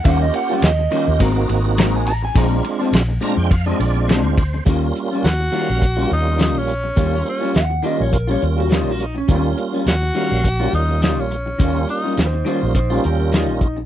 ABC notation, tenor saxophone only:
X:1
M:4/4
L:1/16
Q:"Swing 16ths" 1/4=104
K:Ebmix
V:1 name="Tenor saxophone"
z16 | z16 | z4 _G6 E2 E D3- | D2 D2 z12 |
z4 _G6 E2 E D3- | D2 E2 z12 |]